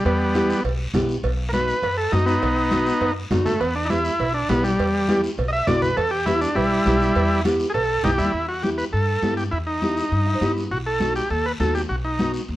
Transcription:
0.05 upright bass E2, transistor combo organ G3 B3, cowbell, high conga, long guiro
0.34 nylon-string guitar B3 E4 G4, cowbell, high conga, short guiro
0.50 short guiro
0.64 upright bass B1, cowbell, high conga, long guiro
0.94 upright bass B1, nylon-string guitar B3 E4 G4, cowbell, high conga, low conga, low timbale, short guiro
1.09 short guiro
1.23 upright bass B1, cowbell, high conga, long guiro
1.49 transistor combo organ A#4
1.53 nylon-string guitar B3 D#4 F#4, transistor combo organ B4, cowbell, high conga, short guiro
1.68 short guiro
1.82 upright bass F#2, cowbell, high conga, long guiro
1.97 transistor combo organ A4
2.12 upright bass F#2, nylon-string guitar B3 D#4 F#4, transistor combo organ D#4, cowbell, high conga, short guiro
2.26 transistor combo organ B3 D#4, short guiro
2.42 upright bass B1, cowbell, high conga, long guiro
2.71 nylon-string guitar B3 D#4 F#4, cowbell, high conga, short guiro
2.86 short guiro
3.01 upright bass F#2, cowbell, high conga, long guiro
3.30 upright bass F#2, nylon-string guitar B3 D#4 F#4, cowbell, high conga, low conga, low timbale, short guiro
3.45 transistor combo organ A3, low conga, short guiro
3.60 upright bass E2, transistor combo organ B3, cowbell, long guiro
3.75 transistor combo organ D4
3.85 transistor combo organ D#4
3.90 nylon-string guitar B3 E4 G4, transistor combo organ E4, cowbell, high conga, short guiro
4.05 short guiro
4.20 upright bass B1, cowbell, high conga, long guiro
4.35 transistor combo organ D4
4.49 upright bass B1, nylon-string guitar B3 E4 G4, transistor combo organ B3, cowbell, high conga, low timbale, short guiro
4.64 transistor combo organ G3, short guiro
4.79 upright bass E2, cowbell, high conga, long guiro
5.08 nylon-string guitar B3 E4 G4, cowbell, high conga, short guiro
5.24 short guiro
5.38 upright bass B1, cowbell, high conga, long guiro
5.49 transistor combo organ D#5
5.53 transistor combo organ E5
5.67 upright bass B1, nylon-string guitar B3 E4 F#4, transistor combo organ D5, cowbell, high conga, low conga, low timbale, short guiro
5.82 transistor combo organ B4, low conga, short guiro
5.97 upright bass E2, transistor combo organ A4, cowbell, high conga, long guiro
6.11 transistor combo organ G4
6.26 nylon-string guitar B3 E4 G4, transistor combo organ E4, cowbell, high conga, short guiro
6.41 transistor combo organ D4, short guiro
6.55 upright bass B1, transistor combo organ G3 E4, cowbell, high conga, long guiro
6.86 upright bass B1, nylon-string guitar B3 E4 G4, cowbell, high conga, short guiro
7.01 short guiro
7.15 upright bass E2, cowbell, long guiro
7.45 nylon-string guitar B3 E4 G4, cowbell, high conga, short guiro
7.60 short guiro
7.70 transistor combo organ G#4
7.74 upright bass B1, transistor combo organ A4, cowbell, high conga, long guiro
8.03 upright bass B1, nylon-string guitar B3 E4 A4, transistor combo organ D#4 G4, cowbell, high conga, low conga, short guiro
8.18 upright bass D#2, transistor combo organ G3 E4, short guiro
8.34 upright bass E2, high conga, long guiro
8.49 transistor combo organ F#4
8.63 nylon-string guitar B3 E4 G4, transistor combo organ G4, high conga, short guiro
8.78 transistor combo organ B4, short guiro
8.93 upright bass G2, transistor combo organ A4, high conga, long guiro
9.22 upright bass G2, nylon-string guitar B3 E4 G4, high conga, short guiro
9.37 transistor combo organ G4, short guiro
9.51 upright bass E2, transistor combo organ E4, high conga, long guiro
9.67 transistor combo organ D#4
9.82 nylon-string guitar B3 E4 G4, high conga, short guiro
9.97 short guiro
10.12 upright bass G2, high conga, long guiro
10.26 nylon-string guitar E5
10.33 nylon-string guitar C5
10.41 upright bass G2, nylon-string guitar B3 E4 G4 B4, high conga, short guiro
10.57 short guiro
10.71 upright bass B1, transistor combo organ F#4, high conga, long guiro
10.86 transistor combo organ A4
11.00 nylon-string guitar B3 D#4 F#4, high conga, short guiro
11.16 transistor combo organ G4, short guiro
11.30 upright bass D#2, transistor combo organ A4, high conga, long guiro
11.46 transistor combo organ B4
11.60 upright bass D#2, nylon-string guitar B3 D#4 F#4, transistor combo organ A4, high conga, short guiro
11.75 transistor combo organ G4, short guiro
11.89 upright bass B1, transistor combo organ F#4, high conga, long guiro
12.04 transistor combo organ D#4
12.19 nylon-string guitar B3 D#4 F#4, high conga, short guiro
12.34 short guiro
12.48 upright bass D#2, high conga, long guiro

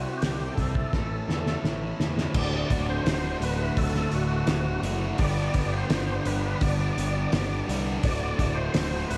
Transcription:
Already playing: overdriven electric guitar C3 G3 C4 E4 G4 C5, tonewheel organ F#4
0.17 tonewheel organ G4
0.22 picked electric bass C2, overdriven electric guitar G4, snare, open hi-hat
0.53 tonewheel organ A4
0.58 picked electric bass C2, overdriven electric guitar C4, kick, open hi-hat
0.75 kick
0.93 picked electric bass A1, overdriven electric guitar A2 E3 A3 C#4 E4 A4, kick, snare
1.28 picked electric bass E2, overdriven electric guitar A4, snare
1.46 snare
1.64 picked electric bass A1, overdriven electric guitar E4, snare
2.00 picked electric bass E2, overdriven electric guitar A3, snare
2.18 snare
2.33 picked electric bass D1, overdriven electric guitar D2 A2 D3 A3 F#4, kick, crash
2.38 overdriven electric guitar D3 A3 F#4, tonewheel organ D5
2.52 overdriven electric guitar D3 A3 F#4
2.70 picked electric bass D1, overdriven electric guitar A2 D3 A3 F#4, kick, open hi-hat
2.88 overdriven electric guitar D3 A3 F#4, tonewheel organ C5
3.05 picked electric bass D1, overdriven electric guitar D2 A2 D3 A3 F#4, snare, open hi-hat
3.41 picked electric bass D1, overdriven electric guitar A2 D3 A3, tonewheel organ B4, open hi-hat
3.45 overdriven electric guitar F#4
3.60 overdriven electric guitar D3 A3 F#4
3.77 picked electric bass D1, tonewheel organ A4, kick, open hi-hat
3.94 overdriven electric guitar D3 A3 F#4, snare
4.11 picked electric bass D1, overdriven electric guitar A2 D3 A3 F#4, tonewheel organ F#4, open hi-hat
4.29 overdriven electric guitar D3 A3 F#4
4.47 picked electric bass D1, overdriven electric guitar D2 A2 D3 A3 F#4, snare, open hi-hat
4.83 picked electric bass F#1, overdriven electric guitar D2 A2 D3 A3 F#4, open hi-hat
5.00 overdriven electric guitar D3 A3 F#4
5.18 picked electric bass G1, overdriven electric guitar G2 D3 G3 B3 D4 G4, tonewheel organ D5, kick, open hi-hat
5.37 overdriven electric guitar G3 B3 D4 G4
5.53 picked electric bass G1, overdriven electric guitar G3 B3 D4 G4, kick, open hi-hat
5.72 overdriven electric guitar G3 B3 D4 G4, tonewheel organ C5
5.89 picked electric bass G1, overdriven electric guitar G2 D3 G3 B3 D4 G4, snare, open hi-hat
6.25 picked electric bass G1, overdriven electric guitar G3 B3 D4 G4, tonewheel organ B4, open hi-hat
6.43 overdriven electric guitar G3 B3 D4 G4, tonewheel organ B4
6.61 picked electric bass G1, tonewheel organ D5, kick, open hi-hat
6.79 overdriven electric guitar G3 B3 D4 G4
6.97 picked electric bass G1, overdriven electric guitar G3 B3 D4 G4, tonewheel organ D5, open hi-hat
7.14 overdriven electric guitar G3 B3 D4 G4
7.32 picked electric bass G1, overdriven electric guitar G2 D3 G3 B3 D4 G4, snare, open hi-hat
7.66 picked electric bass C2, distorted electric guitar G3, overdriven electric guitar B3 D4 G4, open hi-hat
7.70 overdriven electric guitar G2 D3 G3
7.85 overdriven electric guitar G3 B3 D4 G4
8.02 picked electric bass D1, overdriven electric guitar D2 A2 D3 A3 F#4, tonewheel organ D5, kick, open hi-hat
8.06 overdriven electric guitar D3 A3 F#4
8.20 overdriven electric guitar D3 A3 F#4
8.37 picked electric bass D1, overdriven electric guitar A2 D3 A3 F#4, kick, open hi-hat
8.54 overdriven electric guitar D3 A3 F#4, tonewheel organ C5
8.72 picked electric bass D1, overdriven electric guitar D2 A2 D3 A3 F#4, snare, open hi-hat
9.07 picked electric bass D1, overdriven electric guitar A2 D3 A3 F#4, tonewheel organ B4, open hi-hat

